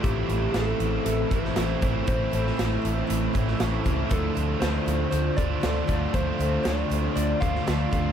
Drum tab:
HH |x-x-x-x-x-x-x-x-|x-x-x-x-x-x-x-x-|x-x-x-x-x-x-x-x-|x-x-x-x-x-x-x-x-|
SD |----o------oo---|---oo------oo---|----o-------o---|----o------oo---|
BD |o---------o---o-|o---------o---o-|o---------o---o-|o---------o---o-|